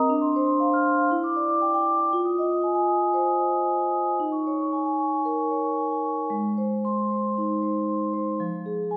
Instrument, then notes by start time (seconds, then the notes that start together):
vibraphone
Already playing: C4 A#4 D#5 A#5 D#6
0.10 D4
0.22 C6
0.36 C5
0.47 C6
0.60 F5
0.74 F6
0.86 C6
0.98 F5
1.11 E4
1.24 D6
1.36 D5
1.49 D6
1.62 G5
1.74 G5
1.86 D6
2.00 G5
2.13 F4
2.25 D#6
2.39 D#5
2.50 D#6
2.64 G#5
2.75 G#5
2.88 D#6
3.01 G#5
3.14 C5
3.26 D#6
3.40 D#5
3.53 D#6
3.66 G#5
3.79 G#5
3.91 D#6
4.05 G#5
4.20 D#4
4.32 C#6
4.47 C#5
4.61 C#6
4.73 G#5
4.86 G#5
5.00 C#6
5.14 G#5
5.25 A#4
5.39 C#6
5.51 C#5
5.65 C#6
5.77 G#5
5.91 G#5
6.05 C#6
6.17 G#5
6.30 G#3
6.58 C5
6.85 C6
7.11 C5
7.38 D#4
7.62 C5
7.89 C6
8.14 C5
8.40 F3
8.66 G#4
8.91 G#5